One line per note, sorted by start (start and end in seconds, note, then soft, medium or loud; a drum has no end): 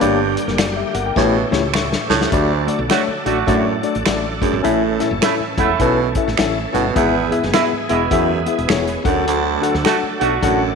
0.00 0.36 G1 loud
0.00 0.45 G2 medium
0.00 1.16 D3 medium
0.00 0.90 G3 medium
0.00 1.16 G3 medium
0.00 0.19 A#3 loud
0.00 1.16 A#3 medium
0.00 0.19 D4 medium
0.00 0.19 G4 medium
0.00 2.30 G4 medium
0.00 0.18 C#5 medium
0.00 0.20 D5 loud
0.00 0.17 A5 medium
0.00 closed hi-hat medium
0.37 closed hi-hat medium
0.48 0.82 F#1 medium
0.48 0.59 D4 medium
0.48 0.59 A#4 medium
0.48 snare soft
0.58 0.76 F#4 medium
0.58 0.76 D5 medium
0.58 finger snap medium
0.58 snare loud
0.58 closed hi-hat loud
0.76 0.94 G4 medium
0.76 0.94 E5 medium
0.94 1.11 G1 medium
0.94 1.05 A#4 medium
0.94 1.05 F#5 medium
0.94 closed hi-hat medium
1.06 1.34 A#4 medium
1.06 1.33 G5 medium
1.16 1.43 A1 loud
1.16 2.07 A2 medium
1.16 1.45 B2 medium
1.16 2.31 E3 medium
1.16 2.31 A3 medium
1.16 1.35 A3 loud
1.16 2.31 C#4 medium
1.16 1.35 E4 medium
1.16 1.36 G4 loud
1.16 1.36 C#5 loud
1.16 kick medium
1.16 snare medium
1.51 1.95 C#2 medium
1.51 1.63 A3 medium
1.51 1.63 E4 medium
1.51 1.64 G4 medium
1.51 1.64 C#5 medium
1.51 snare medium
1.74 2.09 E5 medium
1.74 2.08 C#6 medium
1.74 finger snap loud
1.74 snare medium
1.93 snare medium
2.10 2.26 C#2 medium
2.10 2.28 A2 medium
2.10 2.21 C#5 medium
2.10 2.21 A5 medium
2.10 snare medium
2.21 2.49 G4 medium
2.21 2.49 E5 medium
2.21 snare medium
2.32 2.67 D2 medium
2.32 2.77 D2 medium
2.32 3.22 D3 medium
2.32 4.62 F#3 medium
2.32 6.91 A3 medium
2.32 2.51 A3 loud
2.32 4.62 D4 medium
2.32 2.51 D4 medium
2.32 2.51 F#4 medium
2.32 6.92 A4 medium
2.32 2.51 D5 loud
2.32 kick loud
2.32 closed hi-hat medium
2.67 2.79 A3 medium
2.67 2.79 D4 medium
2.67 2.80 F#4 medium
2.67 2.80 D5 medium
2.67 closed hi-hat medium
2.79 2.87 B1 medium
2.89 3.01 D3 medium
2.89 3.08 A3 medium
2.89 3.01 A3 medium
2.89 3.09 D4 medium
2.89 3.02 F#4 medium
2.89 3.09 F#4 medium
2.89 3.09 C#5 medium
2.89 finger snap medium
2.89 snare loud
2.89 closed hi-hat loud
3.08 muted fretless electric bass stroke soft
3.26 3.42 A1 medium
3.26 3.64 D3 medium
3.26 3.37 A3 medium
3.26 3.64 A3 medium
3.26 3.37 D4 medium
3.26 3.64 F#4 medium
3.26 3.38 F#4 medium
3.26 3.38 D5 medium
3.26 closed hi-hat medium
3.47 3.76 F#2 medium
3.47 3.82 A2 medium
3.47 3.66 A3 loud
3.47 3.66 D4 loud
3.47 3.67 F#4 medium
3.47 3.67 D5 loud
3.47 kick medium
3.47 closed hi-hat medium
3.83 3.95 A3 medium
3.83 3.95 D4 medium
3.83 3.96 F#4 medium
3.83 3.96 D5 medium
3.83 closed hi-hat medium
3.95 4.04 A1 medium
3.95 closed hi-hat soft
4.06 4.41 A1 medium
4.06 4.24 A3 medium
4.06 4.25 D4 medium
4.06 4.25 F#4 medium
4.06 4.25 D5 medium
4.06 finger snap medium
4.06 snare loud
4.06 closed hi-hat medium
4.41 4.60 F#2 medium
4.41 4.53 A3 medium
4.41 4.54 D4 medium
4.41 4.54 F#4 medium
4.41 4.54 G#4 medium
4.41 kick medium
4.41 closed hi-hat medium
4.53 4.61 G#1 medium
4.63 4.99 A1 medium
4.63 5.53 A2 medium
4.63 5.08 A2 medium
4.63 6.94 E3 medium
4.63 4.82 C#4 loud
4.63 6.94 C#4 medium
4.63 4.82 E4 medium
4.63 4.82 A4 loud
4.63 4.83 E5 loud
4.63 closed hi-hat medium
4.99 5.11 C#4 medium
4.99 5.11 E4 medium
4.99 5.12 A4 medium
4.99 5.12 E5 medium
4.99 snare soft
4.99 closed hi-hat medium
5.11 5.19 F#1 medium
5.21 5.34 C#3 medium
5.21 5.34 A3 medium
5.21 5.40 C#4 medium
5.21 5.40 E4 medium
5.21 5.34 E4 loud
5.21 5.41 A4 medium
5.21 5.41 E5 medium
5.21 finger snap medium
5.21 snare loud
5.21 closed hi-hat loud
5.40 muted fretless electric bass stroke soft
5.58 5.74 E1 medium
5.58 5.96 C#3 medium
5.58 5.96 A3 medium
5.58 5.69 C#4 medium
5.58 5.69 E4 medium
5.58 5.96 E4 loud
5.58 5.70 A4 medium
5.58 5.70 F#5 medium
5.58 kick medium
5.58 closed hi-hat medium
5.80 6.14 B1 medium
5.80 6.09 B2 medium
5.80 5.98 C#4 loud
5.80 5.99 E4 loud
5.80 5.99 A4 medium
5.80 5.99 B4 loud
5.80 kick medium
5.80 closed hi-hat medium
6.15 6.27 C#4 medium
6.15 6.28 E4 medium
6.15 6.28 A4 medium
6.15 6.28 E5 medium
6.15 kick medium
6.15 closed hi-hat medium
6.28 6.36 A1 medium
6.28 snare soft
6.37 6.65 A1 medium
6.37 6.56 C#4 medium
6.37 6.56 E4 medium
6.37 6.57 A4 medium
6.37 6.57 E5 medium
6.37 finger snap medium
6.37 snare loud
6.37 closed hi-hat medium
6.73 6.90 G1 medium
6.73 6.91 B2 medium
6.73 6.85 C#4 medium
6.73 6.85 E4 medium
6.73 6.85 A4 medium
6.73 6.86 F#5 medium
6.73 closed hi-hat medium
6.95 7.30 G#1 medium
6.95 7.40 E2 medium
6.95 7.85 G#2 medium
6.95 9.03 E3 medium
6.95 9.03 G#3 medium
6.95 7.14 B3 loud
6.95 9.03 B3 medium
6.95 7.14 E4 medium
6.95 9.03 G#4 medium
6.95 7.15 G#4 loud
6.95 7.15 E5 loud
6.95 kick loud
6.95 closed hi-hat medium
7.31 7.43 B3 medium
7.31 7.43 E4 medium
7.31 7.43 G#4 medium
7.31 7.43 E5 medium
7.31 closed hi-hat medium
7.43 7.52 F#1 medium
7.43 snare soft
7.53 7.65 B2 medium
7.53 7.65 G#3 medium
7.53 7.72 B3 medium
7.53 7.72 E4 medium
7.53 7.65 E4 loud
7.53 7.72 G#4 medium
7.53 7.72 E5 medium
7.53 finger snap medium
7.53 snare loud
7.53 closed hi-hat loud
7.73 muted fretless electric bass stroke soft
7.89 8.07 E1 medium
7.89 8.27 B2 medium
7.89 8.28 G#3 medium
7.89 8.01 B3 medium
7.89 8.27 E4 loud
7.89 8.01 E4 medium
7.89 8.01 G#4 medium
7.89 8.02 E5 medium
7.89 closed hi-hat medium
8.11 8.46 E2 medium
8.11 8.40 F#2 medium
8.11 8.30 B3 loud
8.11 8.30 E4 medium
8.11 8.30 G#4 medium
8.11 8.31 E5 loud
8.11 kick medium
8.11 closed hi-hat medium
8.46 8.58 B3 medium
8.46 8.59 E4 medium
8.46 8.59 G#4 medium
8.46 8.59 E5 medium
8.46 closed hi-hat medium
8.58 8.67 E1 medium
8.58 closed hi-hat soft
8.68 8.96 E1 medium
8.68 8.87 B3 medium
8.68 8.87 E4 medium
8.68 8.88 G#4 medium
8.68 8.88 C#5 medium
8.68 finger snap medium
8.68 snare loud
8.68 closed hi-hat medium
8.87 closed hi-hat medium
9.04 9.56 D2 medium
9.04 9.23 F#2 medium
9.04 9.81 D3 medium
9.04 10.75 F#3 medium
9.04 10.75 A3 medium
9.04 9.48 D4 medium
9.04 10.75 D4 medium
9.04 9.48 F#4 medium
9.04 9.49 A4 medium
9.04 10.75 A4 medium
9.04 9.49 F#5 medium
9.04 kick loud
9.04 closed hi-hat medium
9.27 9.71 D2 medium
9.27 closed hi-hat medium
9.61 9.74 D4 medium
9.61 9.74 F#4 medium
9.61 9.74 A4 medium
9.61 9.75 F#5 medium
9.61 closed hi-hat medium
9.74 9.83 D2 medium
9.74 snare soft
9.84 9.96 D3 medium
9.84 9.97 A3 medium
9.84 10.03 D4 medium
9.84 10.03 F#4 medium
9.84 9.97 F#4 loud
9.84 10.04 A4 medium
9.84 10.04 F#5 medium
9.84 finger snap medium
9.84 snare loud
9.84 closed hi-hat loud
10.03 muted fretless electric bass stroke soft
10.20 10.38 B1 medium
10.20 10.59 D3 medium
10.20 10.59 A3 medium
10.20 10.32 D4 medium
10.20 10.59 F#4 loud
10.20 10.32 F#4 medium
10.20 10.33 A4 medium
10.20 10.33 F#5 medium
10.20 closed hi-hat medium
10.42 10.75 A1 medium
10.42 10.72 F#2 medium
10.42 10.61 D4 loud
10.42 10.61 F#4 medium
10.42 10.62 A4 medium
10.42 10.62 F#5 loud
10.42 kick medium
10.42 closed hi-hat medium